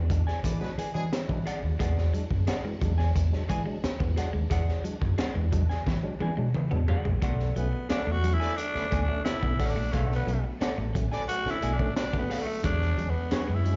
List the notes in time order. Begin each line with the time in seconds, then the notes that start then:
Already playing: E2 E3 G#3 D4 F#4
0.10 G#3 D4, muted clean electric guitar stroke, kick, closed hi-hat
0.27 G#4 D5 G#5, snare
0.43 E3 D4 G#4 B4 D5, muted clean electric guitar stroke, kick, closed hi-hat
0.60 F#3 G#3 B3 D4 F#4 G#4 B4, snare
0.78 E3 G#4 D5 G#5, muted fingered electric bass stroke, closed hi-hat
0.94 E3 F#3 G#3 B3 D4 G#4, muted clean electric guitar stroke
1.11 E3, snare, closed hi-hat
1.29 E3 F#3 G#3 D4, muted clean electric guitar stroke, kick
1.46 G#3 D4 G#4 D5 F#5, closed hi-hat
1.63 D#2
1.79 E2 E3 G#3 G#4 D5 F#5, kick, closed hi-hat
1.98 snare
2.13 F#3 G#3 D4, closed hi-hat
2.31 F#2, muted clean electric guitar stroke, kick
2.47 G#3 D4 G#4 D5 F#5, muted clean electric guitar stroke, snare, closed hi-hat
2.65 E3 G#3
2.81 E2 F#3 G#3 D4, muted clean electric guitar stroke, kick, closed hi-hat
2.98 G#4 D5 G#5, snare
3.15 E2, muted clean electric guitar stroke, kick, closed hi-hat
3.32 F#3 G#3 D4, snare
3.48 E3 G#3 G#4 D5 G#5, kick, closed hi-hat
3.66 F#3 G#3 D4, muted clean electric guitar stroke
3.83 G#3 D4, muted fingered electric bass stroke, snare, closed hi-hat
4.00 E2 E3 B3, muted clean electric guitar stroke, kick
4.16 F#3 G#3 D4 G#4 D5 F#5, muted clean electric guitar stroke, snare, closed hi-hat
4.33 D#2 G#3, muted clean electric guitar stroke
4.50 E2 E3 G#3 G#4 D5 F#5, kick, closed hi-hat
4.68 snare
4.84 F#3 G#3 D4, closed hi-hat
5.02 F#2, muted clean electric guitar stroke, kick
5.18 G#3 D4 G#4 D5 F#5, muted clean electric guitar stroke, muted fingered electric bass stroke, snare, closed hi-hat
5.35 E2 E3 G#3
5.52 F#3 G#3 D4, muted clean electric guitar stroke, kick, closed hi-hat
5.70 G#4 D5 G#5, snare
5.87 E3, muted clean electric guitar stroke, kick, snare
6.03 F#3 G#3 D4
6.20 E3 G#3 G#4 D5 G#5, high tom
6.37 B2 F#3 G#3 D4, muted clean electric guitar stroke
6.54 E3, mid tom
6.71 E2 F#3 G#3 B3 D4, muted clean electric guitar stroke, mid tom
6.88 G#3 D4 G#4 D5 F#5, muted clean electric guitar stroke, floor tom
7.05 A#1 G#3, muted clean electric guitar stroke, floor tom
7.22 B1 B2 D3 F#3 A3 B3 A4 D5 F#5, kick, closed hi-hat
7.40 snare
7.56 B1 F#3 A3 B3 C#4, closed hi-hat
7.73 muted clean electric guitar stroke
7.89 A3 C#4 D4 A4 B4 D5 F#5, muted clean electric guitar stroke, muted fingered electric bass stroke, snare, closed hi-hat
8.07 E2 B2 A3
8.12 F#4
8.23 F#3 A3 C#4, muted clean electric guitar stroke, closed hi-hat
8.34 E4
8.40 D4 A4 B4 D5 G#5, snare
8.57 D4, muted clean electric guitar stroke, closed hi-hat
8.75 D3 A3 C#4 D4 A4 B4 D5, muted fingered electric bass stroke, snare
8.91 D2 B2 A3 A4 D5 G#5, kick, closed hi-hat
9.02 D4
9.08 D3 A3 C#4, muted clean electric guitar stroke
9.24 B2 D4 E4 A4 B4 D5, snare, closed hi-hat
9.42 B1 D3 A3 B3 C#4, muted clean electric guitar stroke, kick
9.59 A1 A3 C#4 A4 D5 F#5, kick, snare, open hi-hat
9.66 C#4
9.70 D4
9.76 A#1 A3, muted clean electric guitar stroke
9.93 B1 B2 A3 G#4 C#5 F5, kick, closed hi-hat
10.06 A4 D5 F#5
10.12 B3, snare
10.27 B1 F#3 A3 C#4, closed hi-hat
10.44 muted clean electric guitar stroke
10.60 A3 C#4 D4 A4 B4 D5 F#5, muted clean electric guitar stroke, muted fingered electric bass stroke, snare, closed hi-hat
10.78 A1 B2 A3
10.94 F#3 A3 C#4, muted clean electric guitar stroke, kick, closed hi-hat
11.12 D4 A4 B4 D5 G#5, snare
11.28 F#4, muted clean electric guitar stroke, closed hi-hat
11.45 D3 A3 C#4 D4 A4 B4 D5, muted fingered electric bass stroke, snare
11.51 E4
11.62 B1 B2 A3 A4 D5 G#5, closed hi-hat
11.73 D4
11.79 D3 A3 C#4, kick
11.96 B2 D4 A4 B4 D5, snare, closed hi-hat
12.13 D3 A3 B3 C#4, muted clean electric guitar stroke, kick
12.19 B3
12.30 A3 C#4 A4 D5 F#5, muted clean electric guitar stroke, snare, open hi-hat
12.42 A3
12.47 A3, muted clean electric guitar stroke
12.64 E2 G#3 D4 G#4 C#5, kick, closed hi-hat
12.82 snare
12.97 E2 F#3 G#3 C#4, closed hi-hat
13.10 B3
13.15 muted clean electric guitar stroke
13.31 G#3 C#4 D4 F#4 G#4 C#5, muted clean electric guitar stroke, muted fingered electric bass stroke, snare, closed hi-hat
13.48 F#2 G#3
13.55 E4
13.65 F#3 G#3 C#4, muted clean electric guitar stroke, closed hi-hat